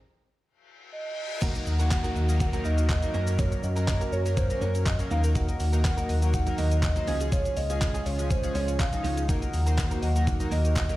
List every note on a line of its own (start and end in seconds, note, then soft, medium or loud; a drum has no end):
0.44 reverse cymbal medium
0.92 1.44 D#5 loud
1.41 3.12 D#3 medium
1.41 1.74 F#3 medium
1.41 1.61 A#3 medium
1.41 1.74 A#3 medium
1.41 3.13 A#3 medium
1.41 1.55 D#4 medium
1.41 1.74 D#4 medium
1.41 3.12 F#4 medium
1.41 1.54 F#4 medium
1.41 1.50 A#4 medium
1.41 1.74 A#4 medium
1.41 1.54 A#4 medium
1.41 2.40 F#5 loud
1.41 kick loud
1.41 closed hi-hat medium
1.41 crash medium
1.41 downlifter medium
1.41 shaker medium
1.55 1.62 D#5 medium
1.55 muted clean electric guitar stroke soft
1.55 closed hi-hat soft
1.55 shaker soft
1.66 2.05 D#2 medium
1.66 1.75 F#5 medium
1.66 muted clean electric guitar stroke soft
1.66 shaker medium
1.79 2.21 F#3 medium
1.79 2.21 A#3 medium
1.79 1.90 A#3 medium
1.79 2.21 D#4 medium
1.79 1.90 D#4 medium
1.79 1.90 F#4 medium
1.79 2.21 F#4 medium
1.79 1.91 A#4 medium
1.79 1.87 A#5 medium
1.79 closed hi-hat medium
1.79 shaker medium
1.91 1.99 A#6 medium
1.91 kick loud
1.91 clap loud
1.91 closed hi-hat medium
1.91 shaker medium
2.04 2.14 A#3 medium
2.04 2.15 D#4 medium
2.04 2.15 F#4 medium
2.04 2.16 A#4 medium
2.04 2.11 A#4 medium
2.04 closed hi-hat medium
2.04 shaker medium
2.15 2.54 D#2 loud
2.15 2.31 A#3 medium
2.15 2.28 D#4 medium
2.15 2.28 F#4 medium
2.15 2.27 A#4 medium
2.15 2.24 D#5 medium
2.15 shaker soft
2.29 2.49 F#3 medium
2.29 2.49 A#3 medium
2.29 2.50 D#4 medium
2.29 2.50 A#4 medium
2.29 muted clean electric guitar stroke soft
2.29 closed hi-hat medium
2.29 shaker medium
2.40 2.67 F#5 loud
2.40 muted clean electric guitar stroke soft
2.40 kick loud
2.40 closed hi-hat medium
2.40 shaker medium
2.53 2.94 F#3 medium
2.53 2.95 A#3 medium
2.53 2.63 A#3 soft
2.53 2.95 D#4 medium
2.53 2.64 D#4 medium
2.53 2.64 F#4 medium
2.53 2.65 A#4 medium
2.53 2.95 A#4 medium
2.53 2.60 A#6 medium
2.53 closed hi-hat medium
2.53 shaker medium
2.64 3.04 D#2 medium
2.64 2.84 A#3 medium
2.64 2.78 D#4 medium
2.64 2.77 F#4 medium
2.64 2.73 A#4 medium
2.64 2.77 A#4 medium
2.64 2.89 D#5 loud
2.64 shaker soft
2.78 2.85 D#5 medium
2.78 muted clean electric guitar stroke soft
2.78 closed hi-hat soft
2.78 shaker medium
2.89 3.40 D#5 loud
2.89 2.98 F#5 medium
2.89 muted clean electric guitar stroke soft
2.89 kick loud
2.89 clap loud
2.89 closed hi-hat medium
2.89 shaker medium
3.02 3.13 F#3 medium
3.02 3.13 A#3 medium
3.02 3.14 D#4 medium
3.02 3.13 A#4 medium
3.02 3.10 A#5 medium
3.02 muted clean electric guitar stroke soft
3.02 closed hi-hat medium
3.02 shaker medium
3.14 3.53 F#2 loud
3.14 3.66 F#3 medium
3.14 5.09 F#3 medium
3.14 3.27 A#3 medium
3.14 3.66 A#3 medium
3.14 3.66 C#4 medium
3.14 3.26 C#4 medium
3.14 5.09 C#4 medium
3.14 3.26 F#4 medium
3.14 5.09 A#4 loud
3.14 3.66 A#4 medium
3.14 3.25 A#4 medium
3.14 3.22 A#6 medium
3.14 shaker soft
3.27 3.37 A#3 medium
3.27 3.38 C#4 medium
3.27 3.38 F#4 medium
3.27 3.38 A#4 medium
3.27 3.34 A#4 medium
3.27 closed hi-hat medium
3.27 shaker medium
3.38 3.57 A#3 medium
3.38 3.51 C#4 medium
3.38 3.51 F#4 loud
3.38 3.47 A#4 medium
3.38 3.50 A#4 loud
3.38 3.65 C#5 loud
3.38 kick loud
3.38 closed hi-hat medium
3.38 shaker medium
3.52 3.59 C#5 medium
3.52 muted clean electric guitar stroke soft
3.52 closed hi-hat soft
3.52 shaker soft
3.63 4.02 F#2 medium
3.63 4.12 D#5 loud
3.63 3.71 F#5 medium
3.63 muted clean electric guitar stroke soft
3.63 shaker medium
3.76 4.17 F#3 medium
3.76 4.18 A#3 medium
3.76 3.86 A#3 medium
3.76 4.18 C#4 medium
3.76 3.87 C#4 medium
3.76 3.87 F#4 medium
3.76 3.87 A#4 medium
3.76 4.18 A#4 medium
3.76 3.84 A#5 medium
3.76 closed hi-hat medium
3.76 shaker medium
3.88 3.96 A#6 medium
3.88 muted clean electric guitar stroke soft
3.88 kick loud
3.88 clap loud
3.88 closed hi-hat medium
3.88 shaker medium
4.00 4.11 A#3 medium
4.00 4.11 C#4 medium
4.00 4.12 F#4 medium
4.00 4.12 A#4 medium
4.00 4.08 A#4 medium
4.00 closed hi-hat medium
4.00 shaker medium
4.12 4.51 F#2 loud
4.12 4.27 A#3 medium
4.12 4.25 C#4 medium
4.12 4.25 F#4 medium
4.12 4.24 A#4 medium
4.12 4.39 C#5 medium
4.12 4.21 C#5 medium
4.12 shaker soft
4.25 4.46 F#3 medium
4.25 4.46 A#3 medium
4.25 4.46 C#4 medium
4.25 4.46 A#4 medium
4.25 muted clean electric guitar stroke medium
4.25 closed hi-hat medium
4.25 shaker medium
4.37 4.63 C5 loud
4.37 muted clean electric guitar stroke soft
4.37 kick loud
4.37 closed hi-hat medium
4.37 shaker medium
4.50 4.91 F#3 medium
4.50 4.91 A#3 medium
4.50 4.92 C#4 medium
4.50 4.92 A#4 medium
4.50 4.57 A#6 medium
4.50 muted clean electric guitar stroke soft
4.50 closed hi-hat medium
4.50 shaker medium
4.61 5.01 F#2 medium
4.61 4.80 A#3 medium
4.61 4.74 C#4 medium
4.61 4.74 F#4 medium
4.61 4.70 A#4 medium
4.61 4.73 A#4 medium
4.61 4.86 C#5 loud
4.61 shaker soft
4.75 4.82 C#5 medium
4.75 muted clean electric guitar stroke soft
4.75 closed hi-hat soft
4.75 shaker medium
4.86 4.97 D#5 medium
4.86 4.94 F#5 medium
4.86 kick loud
4.86 clap loud
4.86 closed hi-hat medium
4.86 shaker medium
4.99 5.10 F#3 medium
4.99 5.10 A#3 medium
4.99 5.11 C#4 medium
4.99 5.10 A#4 medium
4.99 5.06 A#5 medium
4.99 muted clean electric guitar stroke soft
4.99 closed hi-hat medium
4.99 shaker medium
5.11 5.50 D#2 loud
5.11 7.06 D#3 medium
5.11 5.63 F#3 medium
5.11 5.24 A#3 medium
5.11 7.06 A#3 medium
5.11 5.63 A#3 medium
5.11 5.24 D#4 medium
5.11 5.63 D#4 medium
5.11 7.06 F#4 medium
5.11 5.23 F#4 medium
5.11 5.63 A#4 medium
5.11 5.22 A#4 medium
5.11 5.22 F5 loud
5.11 5.19 A#6 medium
5.11 shaker medium
5.24 5.34 A#3 medium
5.24 5.34 D#4 medium
5.24 5.35 F#4 medium
5.24 5.35 A#4 medium
5.24 5.31 A#4 medium
5.24 closed hi-hat medium
5.24 shaker medium
5.35 5.54 A#3 medium
5.35 5.48 D#4 medium
5.35 5.48 F#4 medium
5.35 5.47 A#4 medium
5.35 6.30 F#5 loud
5.35 kick loud
5.35 closed hi-hat medium
5.35 shaker medium
5.48 5.55 D#5 medium
5.48 muted clean electric guitar stroke medium
5.48 closed hi-hat soft
5.48 shaker soft
5.60 5.99 D#2 medium
5.60 5.68 F#5 medium
5.60 muted clean electric guitar stroke medium
5.60 open hi-hat medium
5.60 shaker medium
5.73 6.14 F#3 medium
5.73 6.14 A#3 medium
5.73 5.83 A#3 medium
5.73 6.14 D#4 medium
5.73 5.84 D#4 medium
5.73 5.84 F#4 medium
5.73 5.84 A#4 medium
5.73 6.14 A#4 medium
5.73 5.80 A#5 medium
5.73 closed hi-hat medium
5.73 shaker medium
5.84 5.93 A#6 medium
5.84 muted clean electric guitar stroke soft
5.84 kick loud
5.84 clap loud
5.84 closed hi-hat medium
5.84 shaker medium
5.97 6.08 A#3 medium
5.97 6.08 D#4 medium
5.97 6.09 F#4 medium
5.97 6.09 A#4 medium
5.97 6.05 A#4 medium
5.97 closed hi-hat medium
5.97 shaker medium
6.09 6.48 D#2 loud
6.09 6.24 A#3 medium
6.09 6.22 D#4 medium
6.09 6.21 F#4 medium
6.09 6.21 A#4 medium
6.09 6.17 D#5 loud
6.09 open hi-hat medium
6.09 shaker soft
6.22 6.43 F#3 medium
6.22 6.43 A#3 medium
6.22 6.43 D#4 medium
6.22 6.43 A#4 medium
6.22 muted clean electric guitar stroke soft
6.22 closed hi-hat medium
6.22 shaker medium
6.33 6.60 F#5 loud
6.33 muted clean electric guitar stroke soft
6.33 kick loud
6.33 closed hi-hat medium
6.33 shaker medium
6.47 6.88 F#3 medium
6.47 6.88 A#3 medium
6.47 6.88 D#4 medium
6.47 6.88 A#4 medium
6.47 6.54 A#6 medium
6.47 muted clean electric guitar stroke medium
6.47 closed hi-hat medium
6.47 shaker medium
6.58 6.97 D#2 medium
6.58 6.77 A#3 medium
6.58 6.71 D#4 medium
6.58 6.71 F#4 medium
6.58 6.66 A#4 medium
6.58 6.70 A#4 medium
6.58 6.82 D#5 loud
6.58 open hi-hat medium
6.58 shaker soft
6.71 6.78 D#5 medium
6.71 muted clean electric guitar stroke soft
6.71 closed hi-hat medium
6.71 shaker medium
6.83 7.29 D#5 loud
6.83 6.91 F#5 medium
6.83 kick loud
6.83 clap loud
6.83 closed hi-hat medium
6.83 shaker medium
6.96 7.07 F#3 medium
6.96 7.08 A#3 medium
6.96 7.08 D#4 medium
6.96 7.08 C5 medium
6.96 7.03 A#5 medium
6.96 muted clean electric guitar stroke medium
6.96 closed hi-hat medium
6.96 shaker medium
7.07 7.47 C#2 loud
7.07 9.27 C#3 medium
7.07 7.60 F3 medium
7.07 7.60 G#3 medium
7.07 7.21 G#3 medium
7.07 9.27 G#3 medium
7.07 7.60 C#4 medium
7.07 7.20 C#4 medium
7.07 9.27 F4 medium
7.07 7.20 F4 medium
7.07 7.60 G#4 loud
7.07 7.19 G#4 medium
7.07 7.15 G#6 medium
7.07 open hi-hat medium
7.07 shaker medium
7.20 7.31 G#3 medium
7.20 7.31 C#4 medium
7.20 7.32 F4 medium
7.20 7.32 G#4 medium
7.20 7.28 G#4 medium
7.20 closed hi-hat medium
7.20 shaker medium
7.32 7.51 G#3 medium
7.32 7.45 C#4 medium
7.32 7.45 F4 medium
7.32 7.40 G#4 medium
7.32 7.44 G#4 medium
7.32 7.58 C#5 loud
7.32 kick loud
7.32 closed hi-hat medium
7.32 shaker medium
7.45 7.52 C#5 medium
7.45 muted clean electric guitar stroke soft
7.45 closed hi-hat soft
7.45 shaker soft
7.57 7.96 C#2 medium
7.57 8.08 D#5 loud
7.57 7.65 F5 medium
7.57 muted clean electric guitar stroke soft
7.57 open hi-hat medium
7.57 shaker medium
7.69 8.11 F3 medium
7.69 8.11 G#3 medium
7.69 7.80 G#3 medium
7.69 8.11 C#4 medium
7.69 7.81 C#4 medium
7.69 7.81 F4 medium
7.69 7.81 G#4 medium
7.69 8.11 G#4 medium
7.69 7.77 G#5 medium
7.69 closed hi-hat medium
7.69 shaker medium
7.81 7.89 G#6 medium
7.81 kick loud
7.81 clap loud
7.81 closed hi-hat medium
7.81 shaker medium
7.94 8.04 G#3 medium
7.94 8.05 C#4 medium
7.94 8.05 F4 medium
7.94 8.06 G#4 medium
7.94 8.01 G#4 medium
7.94 closed hi-hat medium
7.94 shaker medium
8.06 8.45 C#2 medium
8.06 8.21 G#3 medium
8.06 8.19 C#4 medium
8.06 8.18 F4 medium
8.06 8.18 G#4 medium
8.06 8.14 C#5 medium
8.06 8.30 C#5 medium
8.06 open hi-hat medium
8.06 shaker soft
8.19 8.39 F3 medium
8.19 8.39 G#3 medium
8.19 8.40 C#4 medium
8.19 8.40 G#4 medium
8.19 muted clean electric guitar stroke soft
8.19 closed hi-hat medium
8.19 shaker medium
8.30 8.56 C5 medium
8.30 muted clean electric guitar stroke soft
8.30 kick loud
8.30 closed hi-hat medium
8.30 shaker medium
8.43 8.85 F3 medium
8.43 8.85 G#3 medium
8.43 8.85 C#4 medium
8.43 8.85 G#4 medium
8.43 8.50 G#6 medium
8.43 muted clean electric guitar stroke soft
8.43 closed hi-hat medium
8.43 shaker medium
8.55 8.94 C#2 medium
8.55 8.74 G#3 medium
8.55 8.68 C#4 medium
8.55 8.67 F4 medium
8.55 8.63 G#4 medium
8.55 8.67 G#4 medium
8.55 8.81 C#5 loud
8.55 open hi-hat medium
8.55 shaker soft
8.68 8.75 C#5 medium
8.68 muted clean electric guitar stroke soft
8.68 closed hi-hat soft
8.68 shaker medium
8.79 8.87 F5 medium
8.79 9.28 F5 loud
8.79 muted clean electric guitar stroke soft
8.79 kick loud
8.79 clap loud
8.79 closed hi-hat medium
8.79 shaker medium
8.92 9.23 F3 medium
8.92 9.23 G#3 medium
8.92 9.24 C#4 medium
8.92 9.24 D#4 medium
8.92 8.99 G#5 medium
8.92 muted clean electric guitar stroke medium
8.92 closed hi-hat medium
8.92 shaker medium
9.04 9.43 C#2 loud
9.04 9.17 G#3 medium
9.04 9.17 C#4 medium
9.04 9.16 F4 medium
9.04 9.16 G#4 medium
9.04 9.12 G#6 medium
9.04 open hi-hat medium
9.04 shaker medium
9.17 9.28 G#3 medium
9.17 9.29 C#4 medium
9.17 9.29 F4 medium
9.17 9.30 G#4 medium
9.17 9.24 G#4 medium
9.17 closed hi-hat medium
9.17 shaker medium
9.29 10.96 D#3 medium
9.29 9.60 F#3 medium
9.29 9.48 A#3 medium
9.29 9.60 A#3 medium
9.29 10.96 A#3 medium
9.29 9.41 D#4 medium
9.29 9.61 D#4 medium
9.29 10.96 F#4 medium
9.29 9.41 F#4 medium
9.29 9.37 A#4 medium
9.29 9.61 A#4 medium
9.29 9.40 A#4 medium
9.29 kick loud
9.29 closed hi-hat medium
9.29 shaker medium
9.42 9.49 D#5 medium
9.42 muted clean electric guitar stroke soft
9.42 closed hi-hat soft
9.42 shaker soft
9.53 9.92 D#2 medium
9.53 9.61 F#5 medium
9.53 muted clean electric guitar stroke soft
9.53 open hi-hat medium
9.53 shaker medium
9.66 10.08 F#3 medium
9.66 10.08 A#3 medium
9.66 9.77 A#3 soft
9.66 10.08 D#4 medium
9.66 9.77 D#4 medium
9.66 9.77 F#4 medium
9.66 9.78 A#4 medium
9.66 10.08 C5 medium
9.66 9.73 A#5 medium
9.66 closed hi-hat medium
9.66 shaker medium
9.78 9.86 A#6 medium
9.78 kick loud
9.78 clap medium
9.78 clap loud
9.78 closed hi-hat medium
9.78 shaker medium
9.91 10.01 A#3 medium
9.91 10.01 D#4 medium
9.91 10.02 F#4 medium
9.91 10.02 A#4 medium
9.91 9.98 A#4 medium
9.91 closed hi-hat medium
9.91 shaker medium
10.02 10.41 D#2 medium
10.02 10.17 A#3 medium
10.02 10.15 D#4 medium
10.02 10.15 F#4 medium
10.02 10.14 A#4 medium
10.02 10.10 D#5 loud
10.02 10.48 F#5 loud
10.02 open hi-hat medium
10.02 shaker medium
10.15 10.36 F#3 medium
10.15 10.36 A#3 medium
10.15 10.36 D#4 medium
10.15 10.36 A#4 medium
10.15 muted clean electric guitar stroke soft
10.15 closed hi-hat medium
10.15 shaker medium
10.27 muted clean electric guitar stroke soft
10.27 kick loud
10.27 closed hi-hat medium
10.27 shaker medium
10.40 10.81 F#3 medium
10.40 10.81 A#3 medium
10.40 10.82 D#4 medium
10.40 10.82 A#4 medium
10.40 10.47 A#6 medium
10.40 muted clean electric guitar stroke soft
10.40 closed hi-hat medium
10.40 shaker medium
10.51 10.91 D#2 medium
10.51 10.70 A#3 medium
10.51 10.64 D#4 medium
10.51 10.64 F#4 medium
10.51 10.59 A#4 medium
10.51 10.63 A#4 medium
10.51 10.75 D#5 loud
10.51 open hi-hat medium
10.51 shaker medium
10.65 10.72 D#5 medium
10.65 muted clean electric guitar stroke medium
10.65 closed hi-hat medium
10.65 shaker medium
10.76 10.84 F#5 medium
10.76 muted clean electric guitar stroke soft
10.76 kick loud
10.76 clap loud
10.76 closed hi-hat medium
10.76 shaker medium
10.89 10.96 F#3 medium
10.89 10.96 A#3 medium
10.89 10.96 D#4 medium
10.89 10.96 A#4 medium
10.89 10.96 A#5 medium
10.89 muted clean electric guitar stroke soft
10.89 closed hi-hat medium
10.89 shaker medium